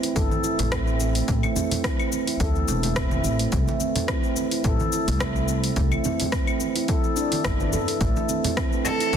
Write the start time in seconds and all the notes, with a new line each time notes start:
0.03 E4, open hi-hat, cabasa
0.16 G1 A4, kick, open hi-hat, cabasa
0.31 E3, high conga, cabasa
0.44 E4, cabasa
0.59 A1 A3, open hi-hat, low conga, cabasa
0.72 C4, kick, cross-stick, open hi-hat, cabasa
0.87 E4, cabasa
1.00 C4, muted conga, cabasa
1.15 A3, open hi-hat, cabasa
1.28 A1 A3, kick, open hi-hat, cabasa
1.43 E3, muted conga, cabasa, claves
1.56 C4, high conga, low conga, cabasa
1.71 E3, open hi-hat, low conga, cabasa
1.84 kick, cross-stick, open hi-hat, cabasa
1.99 E4, cabasa, claves
2.12 C4, high conga, cabasa
2.27 E4, open hi-hat, cabasa
2.40 D2 A4, kick, open hi-hat, cabasa
2.55 E3, cabasa
2.68 E1 E4, cabasa
2.83 A3, open hi-hat, muted conga, high conga, cabasa
2.96 C4, kick, cross-stick, open hi-hat, cabasa
3.11 E4, high conga, cabasa
3.24 A1 C4, muted conga, high conga, cabasa
3.39 A3, open hi-hat, cabasa
3.52 C2 A3, kick, open hi-hat, cabasa
3.67 E3, muted conga, cabasa
3.80 C4, high conga, cabasa
3.96 E3, open hi-hat, low conga, cabasa
4.08 C4, kick, cross-stick, open hi-hat, cabasa
4.23 E4, cabasa
4.36 C4, high conga, cabasa
4.51 E4, open hi-hat, cabasa
4.64 A1 A4, kick, open hi-hat, cabasa
4.80 E3, high conga, cabasa
4.92 E4, cabasa
5.08 C2 A3, open hi-hat, low conga, cabasa
5.20 C4, kick, cross-stick, open hi-hat, cabasa
5.36 E4, cabasa
5.48 C4, muted conga, cabasa
5.64 A3, open hi-hat, cabasa
5.76 C2 A3, kick, open hi-hat, cabasa
5.92 E3, muted conga, cabasa, claves
6.04 C4, high conga, low conga, cabasa
6.20 E3, open hi-hat, low conga, cabasa
6.32 kick, cross-stick, open hi-hat, cabasa
6.47 E4, cabasa, claves
6.60 C4, high conga, cabasa
6.76 E4, open hi-hat, cabasa
6.88 A4, kick, open hi-hat, cabasa
7.04 E3, cabasa
7.16 D4, cabasa
7.32 E4, open hi-hat, muted conga, high conga, cabasa
7.44 G1 E3, kick, cross-stick, open hi-hat, cabasa
7.60 E4, high conga, cabasa
7.73 E2 A4, muted conga, high conga, cabasa
7.88 A4, open hi-hat, cabasa
8.01 A1 A3, kick, open hi-hat, cabasa
8.16 E3, muted conga, cabasa
8.29 C4, high conga, cabasa
8.44 E3, open hi-hat, low conga, cabasa
8.57 kick, cross-stick, open hi-hat, cabasa
8.72 E4, cabasa
8.85 C4 A4, high conga, cabasa
9.00 E4, open hi-hat, cabasa
9.13 G1 A4, kick, open hi-hat, cabasa